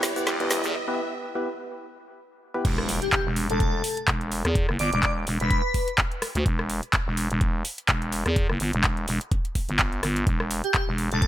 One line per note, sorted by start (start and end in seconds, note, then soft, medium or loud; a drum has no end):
0.00 0.70 G3 medium
0.00 0.12 B3 medium
0.00 0.70 B3 medium
0.00 0.12 E4 medium
0.00 0.70 E4 medium
0.00 0.74 E4 medium
0.00 0.12 G4 medium
0.00 0.12 B4 loud
0.00 0.74 B4 medium
0.00 0.74 G5 medium
0.00 snare medium
0.00 open hi-hat loud
0.00 riser medium
0.00 shaker loud
0.16 0.36 B3 medium
0.16 0.36 E4 medium
0.16 0.36 G4 medium
0.16 0.36 B4 medium
0.16 closed hi-hat medium
0.16 shaker medium
0.27 0.62 E1 loud
0.27 snare medium
0.27 closed hi-hat medium
0.27 shaker soft
0.40 0.62 B3 medium
0.40 0.62 E4 medium
0.40 0.62 G4 medium
0.40 0.62 B4 medium
0.40 closed hi-hat soft
0.50 snare medium
0.50 open hi-hat loud
0.50 shaker loud
0.64 0.74 E2 loud
0.64 closed hi-hat soft
0.64 shaker medium
0.88 1.01 B3 loud
0.88 1.01 E4 medium
0.88 1.01 G4 medium
0.88 1.01 B4 loud
1.35 1.48 B3 medium
1.35 1.48 E4 medium
1.35 1.48 G4 medium
1.35 1.48 B4 loud
2.54 2.89 B3 medium
2.54 2.89 E4 medium
2.54 2.89 G4 medium
2.54 2.89 B4 medium
2.65 3.00 E1 medium
2.65 kick loud
2.65 closed hi-hat medium
2.65 crash loud
2.65 impact medium
2.78 cross-stick medium
2.89 open hi-hat loud
3.02 3.09 G4 medium
3.02 closed hi-hat medium
3.13 3.21 G4 medium
3.13 kick loud
3.13 clap loud
3.13 closed hi-hat medium
3.26 3.48 E1 loud
3.36 open hi-hat loud
3.50 3.82 E1 medium
3.50 3.97 A4 loud
3.50 closed hi-hat medium
3.60 kick loud
3.60 closed hi-hat medium
3.84 open hi-hat loud
3.97 closed hi-hat medium
4.08 4.43 E1 loud
4.08 kick loud
4.08 clap loud
4.08 closed hi-hat medium
4.21 closed hi-hat soft
4.32 open hi-hat medium
4.45 4.67 E2 loud
4.45 cross-stick medium
4.45 closed hi-hat medium
4.55 kick loud
4.55 closed hi-hat medium
4.69 4.77 F#1 loud
4.69 cross-stick medium
4.79 4.90 G1 loud
4.79 4.90 D5 medium
4.79 open hi-hat loud
4.92 5.25 E1 loud
4.92 4.99 D5 medium
4.92 closed hi-hat medium
5.03 5.12 D5 medium
5.03 kick loud
5.03 clap loud
5.03 closed hi-hat medium
5.27 5.38 E1 medium
5.27 open hi-hat loud
5.40 5.62 E1 loud
5.40 5.88 B4 loud
5.40 closed hi-hat medium
5.51 kick loud
5.51 closed hi-hat medium
5.74 kick medium
5.74 open hi-hat loud
5.88 closed hi-hat medium
5.98 kick loud
5.98 clap loud
5.98 closed hi-hat medium
6.12 closed hi-hat soft
6.22 cross-stick medium
6.22 open hi-hat loud
6.35 6.44 D2 medium
6.35 closed hi-hat medium
6.46 6.81 E1 medium
6.46 kick loud
6.46 closed hi-hat medium
6.59 cross-stick medium
6.70 open hi-hat loud
6.83 closed hi-hat medium
6.93 kick loud
6.93 clap loud
6.93 closed hi-hat medium
7.07 7.28 E1 loud
7.17 open hi-hat loud
7.30 7.63 E1 loud
7.30 closed hi-hat medium
7.41 kick loud
7.41 closed hi-hat medium
7.65 open hi-hat loud
7.78 closed hi-hat medium
7.89 8.24 E1 loud
7.89 kick loud
7.89 clap loud
7.89 closed hi-hat medium
8.02 closed hi-hat soft
8.12 open hi-hat loud
8.26 8.47 E2 medium
8.26 cross-stick medium
8.26 closed hi-hat soft
8.36 kick loud
8.36 closed hi-hat medium
8.50 8.58 F#1 loud
8.50 cross-stick medium
8.60 8.71 G1 medium
8.60 open hi-hat loud
8.73 9.06 E1 loud
8.73 closed hi-hat medium
8.84 kick loud
8.84 clap loud
8.84 closed hi-hat medium
8.97 closed hi-hat soft
9.08 9.19 E1 loud
9.08 open hi-hat loud
9.21 closed hi-hat medium
9.32 kick loud
9.32 closed hi-hat medium
9.45 closed hi-hat soft
9.55 kick medium
9.55 open hi-hat loud
9.69 10.01 G1 loud
9.69 closed hi-hat medium
9.79 kick loud
9.79 clap loud
9.79 closed hi-hat medium
9.93 closed hi-hat soft
10.03 10.25 G1 loud
10.03 cross-stick medium
10.03 open hi-hat medium
10.16 closed hi-hat soft
10.27 10.62 E1 medium
10.27 kick loud
10.27 closed hi-hat medium
10.40 cross-stick medium
10.51 open hi-hat loud
10.64 10.71 G4 medium
10.64 closed hi-hat medium
10.74 10.83 G4 medium
10.74 kick loud
10.74 clap loud
10.74 closed hi-hat medium
10.88 11.09 E1 loud
10.98 open hi-hat medium
11.11 11.27 E1 loud
11.11 11.27 A4 loud
11.11 closed hi-hat medium
11.22 kick loud
11.22 closed hi-hat medium